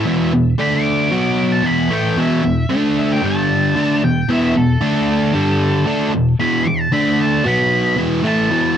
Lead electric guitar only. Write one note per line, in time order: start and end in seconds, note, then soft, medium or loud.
0.00 0.31 E5 loud
0.61 0.73 B5 medium
0.75 1.51 D6 medium
1.52 1.66 A5 medium
1.66 1.91 B5 medium
1.93 2.18 G5 medium
2.20 2.70 E5 medium
2.99 3.12 E5 medium
3.12 3.24 G5 medium
3.26 4.01 A5 loud
4.04 4.29 G5 medium
4.31 4.55 E5 medium
4.57 6.10 A4 loud
6.40 6.67 B5 loud
6.67 6.80 D6 medium
6.80 6.92 A5 loud
6.93 7.18 B5 loud
7.21 7.45 A5 loud
7.48 7.97 B5 loud
8.27 8.76 A5 loud